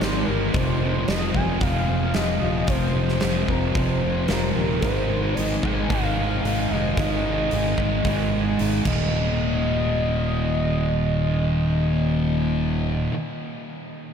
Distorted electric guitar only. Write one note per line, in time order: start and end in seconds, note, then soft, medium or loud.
0.00 0.30 D#3 medium
0.00 0.27 G#3 medium
0.28 0.55 D#3 soft
0.28 3.78 G#3 medium
0.55 1.08 F2 medium
0.55 0.84 C3 medium
0.55 0.82 F3 medium
0.82 1.09 C3 medium
0.82 1.11 F3 medium
1.08 1.62 F2 medium
1.08 1.38 C3 medium
1.08 1.36 F3 medium
1.36 1.62 C3 medium
1.36 1.64 F3 medium
1.62 2.15 F2 medium
1.62 1.92 C3 loud
1.62 1.88 F3 loud
1.89 2.44 C3 medium
1.89 2.41 F3 medium
2.42 2.69 C3 medium
2.42 2.71 F3 medium
2.69 3.20 F2 medium
2.69 2.97 C3 loud
2.69 2.94 F3 loud
2.95 3.22 C3 medium
2.95 3.24 F3 medium
3.22 3.75 F2 medium
3.22 3.51 C3 medium
3.26 3.48 F3 medium
3.49 3.77 C3 medium
3.49 3.78 F3 medium
3.76 4.29 F2 medium
3.76 4.05 C3 medium
3.76 4.02 F3 loud
4.03 4.59 C3 medium
4.03 4.56 F3 medium
4.57 4.83 C3 medium
4.57 4.82 F3 medium
4.83 5.37 G#2 medium
4.83 5.12 D#3 loud
4.83 5.10 G#3 loud
5.10 5.38 D#3 medium
5.10 5.41 G#3 medium
5.38 5.90 G#2 medium
5.38 5.65 D#3 medium
5.38 5.63 G#3 medium
5.63 5.91 D#3 medium
5.63 5.93 G#3 medium
5.90 6.44 G#2 loud
5.90 6.20 D#3 medium
5.90 6.17 G#3 loud
6.18 6.74 D#3 medium
6.18 6.71 G#3 medium
6.72 6.99 D#3 medium
6.72 7.01 G#3 medium
6.98 7.50 G#2 medium
6.98 7.28 D#3 medium
6.98 7.25 G#3 loud
7.26 7.52 D#3 medium
7.26 7.53 G#3 medium
7.51 8.02 G#2 medium
7.51 7.81 D#3 medium
7.51 7.77 G#3 medium
7.78 8.05 D#3 medium
7.78 8.06 G#3 medium
8.04 8.58 G#2 medium
8.04 8.33 D#3 medium
8.04 8.30 G#3 loud
8.31 8.87 D#3 medium
8.31 8.85 G#3 medium
8.84 13.09 D#2 medium
8.84 13.12 A#2 medium
8.88 13.14 D#3 medium